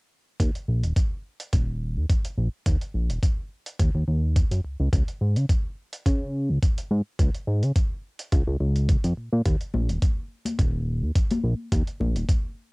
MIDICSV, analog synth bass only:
0, 0, Header, 1, 2, 480
1, 0, Start_track
1, 0, Tempo, 566038
1, 339, Time_signature, 4, 2, 24, 8
1, 10792, End_track
2, 0, Start_track
2, 0, Title_t, "Analog synth bass"
2, 0, Program_c, 0, 38
2, 336, Note_on_c, 0, 39, 93
2, 430, Note_off_c, 0, 39, 0
2, 578, Note_on_c, 0, 34, 76
2, 706, Note_on_c, 0, 27, 75
2, 719, Note_off_c, 0, 34, 0
2, 787, Note_off_c, 0, 27, 0
2, 1296, Note_on_c, 0, 27, 81
2, 1665, Note_on_c, 0, 39, 81
2, 1678, Note_off_c, 0, 27, 0
2, 1746, Note_off_c, 0, 39, 0
2, 2015, Note_on_c, 0, 34, 82
2, 2109, Note_off_c, 0, 34, 0
2, 2257, Note_on_c, 0, 39, 98
2, 2350, Note_off_c, 0, 39, 0
2, 2496, Note_on_c, 0, 34, 76
2, 2625, Note_on_c, 0, 27, 74
2, 2638, Note_off_c, 0, 34, 0
2, 2706, Note_off_c, 0, 27, 0
2, 3218, Note_on_c, 0, 39, 98
2, 3311, Note_off_c, 0, 39, 0
2, 3349, Note_on_c, 0, 39, 86
2, 3428, Note_off_c, 0, 39, 0
2, 3459, Note_on_c, 0, 39, 82
2, 3769, Note_off_c, 0, 39, 0
2, 3828, Note_on_c, 0, 42, 80
2, 3908, Note_off_c, 0, 42, 0
2, 3940, Note_on_c, 0, 37, 42
2, 4042, Note_off_c, 0, 37, 0
2, 4069, Note_on_c, 0, 37, 91
2, 4148, Note_off_c, 0, 37, 0
2, 4179, Note_on_c, 0, 37, 91
2, 4271, Note_off_c, 0, 37, 0
2, 4419, Note_on_c, 0, 44, 77
2, 4547, Note_on_c, 0, 49, 75
2, 4560, Note_off_c, 0, 44, 0
2, 4627, Note_off_c, 0, 49, 0
2, 5138, Note_on_c, 0, 49, 80
2, 5506, Note_on_c, 0, 37, 82
2, 5519, Note_off_c, 0, 49, 0
2, 5586, Note_off_c, 0, 37, 0
2, 5858, Note_on_c, 0, 44, 85
2, 5950, Note_off_c, 0, 44, 0
2, 6098, Note_on_c, 0, 37, 92
2, 6191, Note_off_c, 0, 37, 0
2, 6337, Note_on_c, 0, 44, 77
2, 6466, Note_on_c, 0, 49, 78
2, 6479, Note_off_c, 0, 44, 0
2, 6547, Note_off_c, 0, 49, 0
2, 7059, Note_on_c, 0, 37, 96
2, 7151, Note_off_c, 0, 37, 0
2, 7186, Note_on_c, 0, 37, 90
2, 7267, Note_off_c, 0, 37, 0
2, 7296, Note_on_c, 0, 37, 82
2, 7607, Note_off_c, 0, 37, 0
2, 7668, Note_on_c, 0, 41, 81
2, 7747, Note_off_c, 0, 41, 0
2, 7780, Note_on_c, 0, 46, 40
2, 7882, Note_off_c, 0, 46, 0
2, 7908, Note_on_c, 0, 46, 92
2, 7987, Note_off_c, 0, 46, 0
2, 8018, Note_on_c, 0, 39, 94
2, 8111, Note_off_c, 0, 39, 0
2, 8259, Note_on_c, 0, 34, 80
2, 8388, Note_on_c, 0, 27, 76
2, 8401, Note_off_c, 0, 34, 0
2, 8467, Note_off_c, 0, 27, 0
2, 8978, Note_on_c, 0, 27, 84
2, 9345, Note_on_c, 0, 39, 78
2, 9358, Note_off_c, 0, 27, 0
2, 9426, Note_off_c, 0, 39, 0
2, 9698, Note_on_c, 0, 34, 84
2, 9790, Note_off_c, 0, 34, 0
2, 9939, Note_on_c, 0, 39, 96
2, 10031, Note_off_c, 0, 39, 0
2, 10178, Note_on_c, 0, 34, 76
2, 10308, Note_on_c, 0, 27, 77
2, 10320, Note_off_c, 0, 34, 0
2, 10387, Note_off_c, 0, 27, 0
2, 10792, End_track
0, 0, End_of_file